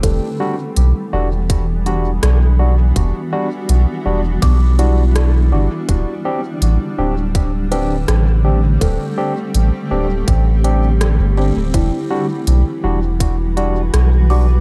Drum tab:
HH |x-x-xxx-|x-x-xxx-|x-x-xxx-|x-x-xxx-|
SD |------r-|------r-|------r-|------r-|
BD |o---o---|o---o---|o---o---|o---o---|

HH |x-x-xxx-|
SD |------r-|
BD |o---o---|